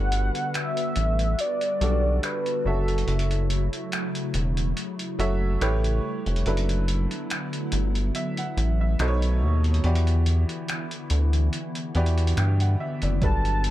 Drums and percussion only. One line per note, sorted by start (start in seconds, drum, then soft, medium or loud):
0.12 closed hi-hat medium
0.35 closed hi-hat soft
0.54 finger snap loud
0.54 closed hi-hat medium
0.77 closed hi-hat medium
0.96 closed hi-hat medium
1.19 closed hi-hat soft
1.39 closed hi-hat medium
1.61 closed hi-hat soft
1.81 closed hi-hat medium
2.23 finger snap medium
2.23 closed hi-hat medium
2.46 closed hi-hat soft
2.88 closed hi-hat soft
2.98 closed hi-hat soft
3.08 closed hi-hat soft
3.19 closed hi-hat medium
3.31 closed hi-hat soft
3.50 closed hi-hat medium
3.73 closed hi-hat soft
3.92 finger snap loud
3.92 closed hi-hat medium
4.15 closed hi-hat medium
4.34 closed hi-hat medium
4.57 closed hi-hat soft
4.77 closed hi-hat medium
4.99 closed hi-hat soft
5.20 closed hi-hat medium
5.61 finger snap loud
5.61 closed hi-hat medium
5.84 closed hi-hat soft
6.26 closed hi-hat soft
6.36 closed hi-hat soft
6.46 closed hi-hat soft
6.57 closed hi-hat medium
6.69 closed hi-hat soft
6.88 closed hi-hat medium
7.11 closed hi-hat soft
7.30 finger snap loud
7.30 closed hi-hat medium
7.53 closed hi-hat medium
7.72 closed hi-hat medium
7.95 closed hi-hat soft
8.15 closed hi-hat medium
8.37 closed hi-hat soft
8.58 closed hi-hat medium
8.99 finger snap loud
8.99 closed hi-hat medium
9.22 closed hi-hat soft
9.64 closed hi-hat soft
9.74 closed hi-hat soft
9.84 closed hi-hat soft
9.95 closed hi-hat medium
10.07 closed hi-hat soft
10.26 closed hi-hat medium
10.49 closed hi-hat soft
10.68 finger snap loud
10.68 closed hi-hat medium
10.91 closed hi-hat medium
11.10 closed hi-hat medium
11.33 closed hi-hat soft
11.53 closed hi-hat medium
11.75 closed hi-hat soft
11.95 closed hi-hat soft
12.06 closed hi-hat soft
12.18 closed hi-hat medium
12.27 closed hi-hat medium
12.37 finger snap medium
12.37 closed hi-hat medium
12.60 closed hi-hat soft
13.02 closed hi-hat medium
13.22 kick loud
13.22 closed hi-hat medium
13.45 closed hi-hat soft
13.64 closed hi-hat medium